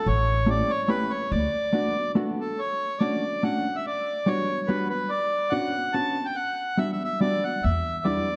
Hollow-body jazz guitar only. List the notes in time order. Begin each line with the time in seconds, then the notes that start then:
0.46 A3 C#4 E4 G4
0.88 A3 C#4 E4 G4
1.73 A3 B3 D4 F#4
2.15 A3 B3 D4 F#4
3.01 A3 C#4 D4 F#4
3.43 A3 C#4 D4 F#4
4.26 G3 B3 D4 F#4
4.69 G3 B3 D4 F#4
5.52 B3 C#4 D4 F#4
5.94 B3 C#4 D4 F#4
6.77 G3 B3 D4 F#4
7.21 G3 B3 D4 F#4
8.05 G3 B3 D4 E4